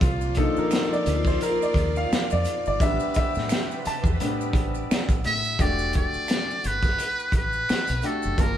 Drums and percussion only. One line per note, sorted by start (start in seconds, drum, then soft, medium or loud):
0.01 kick loud
0.01 closed hi-hat medium
0.01 maracas medium
0.21 maracas medium
0.35 kick medium
0.35 closed hi-hat medium
0.35 maracas soft
0.57 maracas soft
0.71 finger snap medium
0.71 snare loud
0.71 closed hi-hat medium
0.71 maracas medium
0.93 maracas soft
1.06 closed hi-hat medium
1.06 maracas soft
1.25 kick medium
1.25 snare soft
1.25 maracas soft
1.41 closed hi-hat medium
1.41 maracas medium
1.62 maracas soft
1.74 kick medium
1.74 closed hi-hat medium
1.74 maracas soft
1.96 maracas medium
2.13 finger snap medium
2.13 snare loud
2.13 closed hi-hat medium
2.13 maracas medium
2.30 maracas medium
2.44 closed hi-hat medium
2.44 maracas soft
2.66 maracas soft
2.80 kick loud
2.80 closed hi-hat medium
2.80 maracas medium
3.00 maracas medium
3.14 kick medium
3.14 closed hi-hat medium
3.14 maracas soft
3.35 snare soft
3.35 maracas soft
3.49 finger snap medium
3.49 snare loud
3.49 closed hi-hat medium
3.49 maracas medium
3.71 maracas soft
3.85 closed hi-hat medium
3.85 maracas soft
4.04 kick medium
4.04 maracas soft
4.20 closed hi-hat medium
4.20 maracas medium
4.41 maracas soft
4.53 kick loud
4.53 closed hi-hat medium
4.53 maracas soft
4.75 maracas medium
4.91 finger snap medium
4.91 snare loud
4.91 closed hi-hat medium
4.91 maracas medium
5.09 kick loud
5.09 closed hi-hat medium
5.09 maracas medium
5.24 closed hi-hat medium
5.24 maracas soft
5.45 maracas medium
5.59 kick loud
5.59 closed hi-hat medium
5.59 maracas medium
5.79 maracas soft
5.93 kick medium
5.93 closed hi-hat medium
5.93 maracas soft
6.14 maracas soft
6.28 finger snap medium
6.28 snare loud
6.28 closed hi-hat medium
6.28 maracas medium
6.50 maracas soft
6.64 closed hi-hat medium
6.64 maracas soft
6.83 kick medium
6.83 snare soft
6.83 maracas soft
6.98 closed hi-hat medium
6.98 maracas medium
7.20 maracas soft
7.32 kick medium
7.32 closed hi-hat medium
7.32 maracas soft
7.53 maracas medium
7.69 finger snap medium
7.69 snare loud
7.69 closed hi-hat medium
7.69 maracas medium
7.87 closed hi-hat medium
7.87 maracas soft
8.02 closed hi-hat medium
8.02 maracas soft
8.23 maracas soft
8.38 kick loud
8.38 closed hi-hat medium
8.38 maracas medium